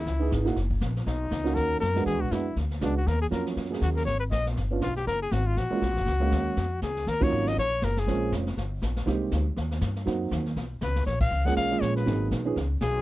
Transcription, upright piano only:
X:1
M:4/4
L:1/8
Q:"Swing" 1/4=240
K:F#
V:1 name="Upright piano"
z [B,D=EG]2 [A,DEF] z4 | z3 [A,CDF]3 z [G,B,=DF]- | [G,B,=DF]2 [G,B,DF] z3 [G,B,DF] z | z2 [F,A,CE]3 [F,A,CG]3 |
z4 z [B,C=D=F] z2 | z4 z [G,A,CE] z2 | z [G,A,Ce]3 z4 | [K:Ebm] z [G,B,DEF]3 z4 |
[A,B,=CDF]3 z4 z | [A,B,=CE=G]3 z4 z | [G,B,=CEG]3 z4 z | z3 [A,B,DFA]2 [A,B,DFA]3 |
[G,B,CEA]3 [F,CDEA] z4 |]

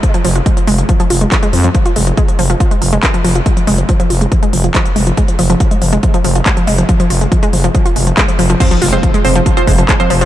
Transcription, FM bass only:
X:1
M:4/4
L:1/8
Q:1/4=140
K:Fm
V:1 name="FM bass" clef=bass
z F,,, z F,,, z F,,, z F,, | z F,,, z F,,, z F,,, z F,,, | z F,,, z F,,, z F,,, z F,,, | z F,,, z F,,, z F,,, z F,,, |
z F,,, z F,,, z F,,, z F,,, | z F,,, z F,,, z F,,, z F,,, |]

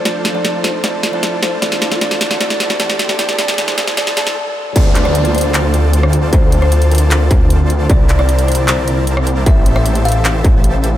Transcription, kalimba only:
X:1
M:4/4
L:1/16
Q:1/4=153
K:Dm
V:1 name="Kalimba"
d3 d3 c2 d3 d3 c2 | d3 d d3 d d3 d d3 d | d2 d2 d2 d2 d2 d2 z4 | d3 d3 c2 z8 |
c3 c3 B2 z8 | d3 d3 c2 z8 | e3 e3 f2 z8 |]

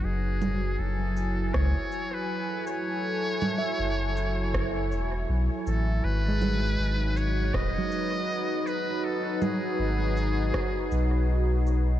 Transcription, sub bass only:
X:1
M:4/4
L:1/8
Q:"Swing 16ths" 1/4=80
K:F#dor
V:1 name="Sub bass" clef=bass
F,,,2 F,,,2 C,, z3 | z2 F,,,3 E,,, B,,, A,,, | G,,,2 G,,,2 D,,, z3 | z2 G,,,2 z B,,,3 |]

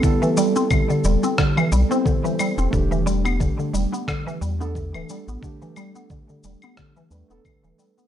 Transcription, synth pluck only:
X:1
M:4/4
L:1/16
Q:"Swing 16ths" 1/4=89
K:Em
V:1 name="Synth pluck" clef=bass
D, E, G, C D, D, G, C D, E, G, C D, E, G, C | D, E, G, B, D, D, G, B, D, E, G, B, D, E, G, B, | D, E, G, B, D, D, G, B, D, E, G, B, D, E, G, B, |]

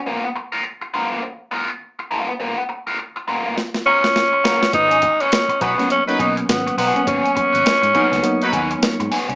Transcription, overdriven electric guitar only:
X:1
M:4/4
L:1/16
Q:"Swing 16ths" 1/4=103
K:G#dor
V:1 name="Overdriven electric guitar"
[B,EA] z2 [B,EA] z2 [B,EA] [B,EA] z2 [B,EA] z3 [B,EA] z | [B,EA] z2 [B,EA] z2 [B,EA] [B,EA] z2 [B,EA] z3 [B,EA] z | [CFB] z2 [CFB] z2 [CFB] [CFB] z2 [CFB] z3 [CFB] z | [CFB] z2 [CFB] z2 [CFB] [CFB] z2 [CFB] z3 [CFB] z |]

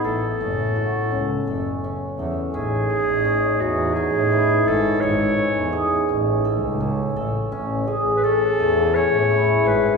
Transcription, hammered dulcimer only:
X:1
M:7/8
L:1/8
Q:1/4=84
K:Alyd
V:1 name="Hammered dulcimer"
A C F C A C A | C G C G C E, C | A C G C A C A | C G C g C E C |]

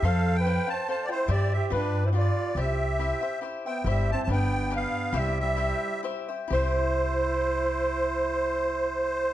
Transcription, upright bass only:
X:1
M:3/4
L:1/8
Q:"Swing" 1/4=138
K:C
V:1 name="Upright bass" clef=bass
F,,4 z2 | G,,2 G,,4 | C,,4 z2 | G,,,2 G,,,4 |
C,,4 z2 | C,,6- | C,,6 |]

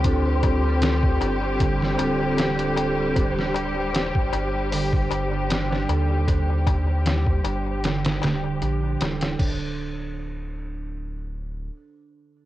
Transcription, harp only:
X:1
M:4/4
L:1/16
Q:"Swing 16ths" 1/4=77
K:Eblyd
V:1 name="Harp"
D4 z2 D2 D,2 G D D D A2 | D4 z2 D2 D,2 G D D D A2 | D4 z2 D2 D,2 G D D D A2 | D2 z12 z2 |]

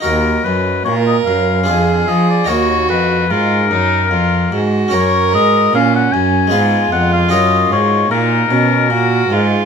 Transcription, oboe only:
X:1
M:3/4
L:1/16
Q:1/4=74
K:Ebm
V:1 name="Oboe"
B2 c2 d e f4 e =d | d2 c2 B6- B z | d2 e2 f g a4 g f | e2 d2 B6- B z |]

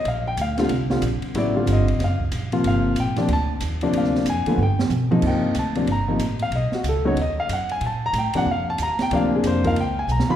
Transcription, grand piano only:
X:1
M:4/4
L:1/8
Q:"Swing" 1/4=186
K:Bb
V:1 name="Grand piano"
[=ef] g f3 z3 | d2 e2 ^e z3 | f2 g2 a z3 | f2 _a2 g z3 |
g2 a2 b z2 f | ^d ^F A ^c d =f ^f _a | a b g ^f =f a b g | f _A c f g ^g b =b |]
V:2 name="Grand piano"
z3 [D,G,CF] z [D,G,CF] z2 | [^C,^F,=B,=E] [D,G,=C=F]2 z4 [^B,,^E,^A,^E]- | [^B,,^E,^A,^E]2 z [C,F,_B,D] z3 [C,F,B,D]- | [C,F,B,D]2 z [D,F,A,=B,] z3 [C,F,_B,E]- |
[C,F,B,E]2 z [C,F,B,D] z [C,F,B,E] z2 | z3 [^C,^F,=B,^D] z4 | z3 [C,F,B,D] z4 | [C,F,B,D]3 [F,B,EB] z3 [^E,B,_E^E] |]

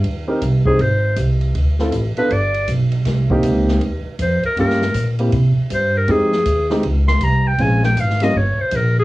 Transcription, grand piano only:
X:1
M:4/4
L:1/8
Q:"Swing" 1/4=159
K:Ab
V:1 name="Grand piano"
z [CEGB] z [CEGc] z4 | z [C_F=F=A] z [_C=DFA] z4 | z [B,CEG]3 z4 | [B,DFG] z2 [B,C_FG] z4 |
[A,CEG] z2 [A,CEG] z4 | [A,CDF] z2 [G,B,DF] z4 |]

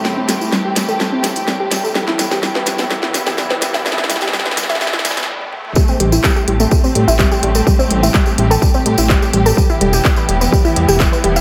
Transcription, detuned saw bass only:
X:1
M:4/4
L:1/16
Q:1/4=126
K:Am
V:1 name="Detuned saw bass" clef=bass
z2 A,,,2 z2 A,,,2 z2 A,, A,,,2 z A,,,2 | z8 z2 E,, z4 z | z8 z2 E,, z4 z | z2 A,,,2 z2 A,,,2 z2 A,, A,,,2 z A,,,2 |
z2 A,,,2 z2 A,,,2 z2 A,, A,,,2 z A,,,2 | z2 E,,,2 z2 E,,,2 z2 E,, E,,,2 z E,,,2 |]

